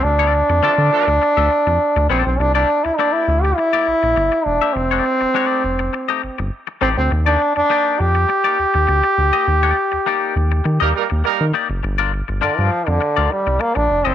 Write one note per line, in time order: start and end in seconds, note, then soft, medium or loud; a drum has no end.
0.03 0.43 D2 loud
0.03 2.10 D4 loud
0.03 muted clean electric guitar stroke soft
0.19 0.32 C4 medium
0.19 0.33 F4 medium
0.19 0.33 A4 medium
0.19 0.34 D5 medium
0.49 0.61 F2 medium
0.49 muted clean electric guitar stroke medium
0.62 0.69 D3 medium
0.62 0.72 F3 medium
0.62 0.72 A3 medium
0.62 0.90 C4 medium
0.62 0.72 D4 medium
0.62 0.90 F4 loud
0.62 0.72 A4 loud
0.62 0.90 A4 loud
0.62 0.90 D5 loud
0.78 0.90 D3 loud
0.91 1.05 F3 medium
0.91 1.05 A3 medium
0.91 1.05 D4 loud
0.91 1.05 A4 loud
0.91 muted clean electric guitar stroke soft
1.08 1.19 D2 medium
1.08 muted clean electric guitar stroke soft
1.22 muted clean electric guitar stroke soft
1.37 1.49 D2 loud
1.37 1.50 C4 medium
1.37 1.51 F4 medium
1.37 1.51 A4 medium
1.37 1.52 E5 medium
1.51 muted clean electric guitar stroke soft
1.67 1.79 F2 medium
1.67 muted clean electric guitar stroke soft
1.96 2.08 D2 medium
1.96 muted clean electric guitar stroke soft
2.10 2.24 A#1 medium
2.10 2.30 C4 medium
2.10 2.25 C4 medium
2.10 2.25 F4 medium
2.10 2.25 A4 medium
2.10 2.24 D5 medium
2.26 2.38 B1 medium
2.26 2.41 C4 medium
2.26 muted clean electric guitar stroke soft
2.39 2.65 C2 loud
2.39 2.54 D4 loud
2.39 muted clean electric guitar stroke soft
2.55 2.68 A#3 medium
2.55 2.85 D4 loud
2.55 2.68 E4 medium
2.55 2.69 G4 medium
2.55 2.69 D5 medium
2.69 muted clean electric guitar stroke soft
2.84 2.91 D2 soft
2.84 2.99 E4 loud
2.84 muted clean electric guitar stroke soft
2.98 3.26 A#3 medium
2.98 3.14 D4 medium
2.98 3.26 E4 medium
2.98 3.26 G4 medium
2.98 3.27 D5 medium
3.13 3.44 E4 medium
3.28 3.53 D2 medium
3.28 muted clean electric guitar stroke soft
3.42 3.57 G4 loud
3.42 muted clean electric guitar stroke soft
3.56 4.47 E4 loud
3.56 muted clean electric guitar stroke soft
3.73 3.86 A#3 medium
3.73 3.87 E4 medium
3.73 3.87 G4 medium
3.73 3.88 D5 loud
3.87 3.93 A#1 soft
3.87 muted clean electric guitar stroke soft
4.03 4.15 A#1 medium
4.03 muted clean electric guitar stroke soft
4.16 4.30 G1 medium
4.16 muted clean electric guitar stroke soft
4.32 muted clean electric guitar stroke soft
4.45 4.59 E1 loud
4.45 4.75 D4 medium
4.62 4.75 A#3 medium
4.62 4.75 E4 medium
4.62 4.75 G4 medium
4.62 4.76 E5 medium
4.74 5.01 F1 loud
4.74 6.51 C4 loud
4.74 muted clean electric guitar stroke soft
4.91 5.04 A3 medium
4.91 5.04 D#4 medium
4.91 5.05 G4 medium
4.91 5.05 D5 medium
5.05 muted clean electric guitar stroke soft
5.21 5.26 F1 soft
5.21 muted clean electric guitar stroke soft
5.34 5.45 G#3 medium
5.34 5.46 D4 medium
5.34 5.47 F#4 medium
5.34 5.47 C#5 medium
5.45 5.62 A3 medium
5.45 5.62 D#4 medium
5.45 5.62 G4 medium
5.45 5.62 D5 medium
5.64 5.89 F1 medium
5.64 muted clean electric guitar stroke soft
5.79 muted clean electric guitar stroke medium
5.93 muted clean electric guitar stroke soft
6.09 6.21 A3 medium
6.09 6.22 D#4 medium
6.09 6.22 G4 medium
6.09 6.23 D#5 medium
6.23 6.29 G1 medium
6.23 muted clean electric guitar stroke soft
6.38 6.51 G1 medium
6.38 muted clean electric guitar stroke medium
6.67 muted clean electric guitar stroke soft
6.81 6.95 A1 medium
6.81 6.99 A3 medium
6.81 6.89 C4 loud
6.81 6.97 D#4 medium
6.81 6.97 G4 medium
6.81 6.96 D5 medium
6.97 7.10 D2 loud
6.97 7.11 C4 medium
6.97 muted clean electric guitar stroke soft
7.11 7.37 D#2 loud
7.11 muted clean electric guitar stroke medium
7.26 7.40 A#3 medium
7.26 7.54 D4 loud
7.26 7.40 D#4 medium
7.26 7.40 G4 medium
7.26 7.41 D5 medium
7.41 muted clean electric guitar stroke soft
7.56 7.62 F2 soft
7.56 8.01 D4 loud
7.56 muted clean electric guitar stroke soft
7.70 7.97 A#3 medium
7.70 7.98 D#4 medium
7.70 7.98 G4 medium
7.70 7.98 D5 medium
7.99 8.25 F2 medium
7.99 11.24 G4 medium
7.99 muted clean electric guitar stroke soft
8.15 muted clean electric guitar stroke medium
8.29 muted clean electric guitar stroke soft
8.44 8.58 A#3 medium
8.44 8.58 D#4 medium
8.44 8.59 G4 medium
8.44 8.59 D5 medium
8.59 8.65 D#2 soft
8.59 muted clean electric guitar stroke soft
8.74 8.87 D#2 medium
8.74 muted clean electric guitar stroke medium
8.87 9.02 D2 loud
8.87 muted clean electric guitar stroke soft
9.04 muted clean electric guitar stroke medium
9.18 9.31 D2 medium
9.33 9.46 A#3 medium
9.33 9.47 D#4 medium
9.33 9.47 G4 medium
9.33 9.48 D#5 medium
9.47 9.73 D#2 loud
9.47 muted clean electric guitar stroke soft
9.63 9.75 A#3 medium
9.63 9.76 D#4 medium
9.63 9.76 G4 medium
9.63 9.76 D5 medium
9.76 muted clean electric guitar stroke soft
9.92 9.98 D#2 soft
9.92 muted clean electric guitar stroke medium
10.06 10.34 A#3 medium
10.06 10.34 D#4 medium
10.06 10.34 G4 medium
10.06 10.34 D5 medium
10.36 10.61 D#2 loud
10.36 muted clean electric guitar stroke soft
10.52 muted clean electric guitar stroke soft
10.64 10.79 D#3 loud
10.64 muted clean electric guitar stroke soft
10.80 10.93 D#2 medium
10.80 10.90 G3 medium
10.80 10.90 A#3 medium
10.80 10.93 A#3 medium
10.80 10.93 D#4 medium
10.80 10.90 D#4 medium
10.80 10.94 G4 medium
10.80 10.90 A#4 loud
10.80 10.95 D#5 medium
10.94 11.05 G3 loud
10.94 11.05 A#3 medium
10.94 11.05 D#4 medium
10.94 11.05 A#4 loud
10.94 muted clean electric guitar stroke soft
11.10 11.23 D#2 medium
11.10 muted clean electric guitar stroke medium
11.24 11.43 G3 loud
11.24 11.43 A#3 loud
11.24 11.43 D#4 medium
11.24 11.43 A#4 loud
11.24 muted clean electric guitar stroke soft
11.41 11.52 D#3 loud
11.54 11.67 A#3 medium
11.54 11.68 D#4 medium
11.54 11.68 G4 medium
11.54 11.68 D5 medium
11.69 11.81 F#1 medium
11.69 muted clean electric guitar stroke soft
11.83 12.22 G1 loud
11.83 muted clean electric guitar stroke soft
11.98 12.12 D4 medium
11.98 12.12 F4 medium
11.98 12.12 A#4 medium
11.98 12.13 D5 medium
12.13 muted clean electric guitar stroke soft
12.28 12.40 G1 loud
12.28 muted clean electric guitar stroke soft
12.41 12.49 G2 medium
12.41 12.60 D3 medium
12.41 12.69 D4 medium
12.41 12.69 F4 medium
12.41 12.70 A#4 medium
12.41 12.70 D5 medium
12.58 12.70 G2 medium
12.58 12.89 F3 medium
12.72 muted clean electric guitar stroke soft
12.87 12.99 F2 medium
12.87 13.33 D3 medium
12.87 muted clean electric guitar stroke soft
13.01 muted clean electric guitar stroke soft
13.17 13.29 D2 loud
13.17 13.30 D4 medium
13.17 13.30 F4 medium
13.17 13.30 A#4 medium
13.17 13.31 D5 medium
13.31 13.62 G3 medium
13.31 muted clean electric guitar stroke soft
13.47 13.58 C2 medium
13.47 muted clean electric guitar stroke medium
13.60 13.78 A#3 loud
13.60 muted clean electric guitar stroke soft
13.75 13.88 A#1 medium
13.75 14.08 D4 loud
13.75 muted clean electric guitar stroke soft
13.90 14.03 F1 medium
14.05 14.15 F#1 medium
14.05 14.15 C4 medium
14.05 14.15 D4 medium
14.05 14.15 F4 medium
14.05 14.15 A#4 medium
14.05 14.15 E5 medium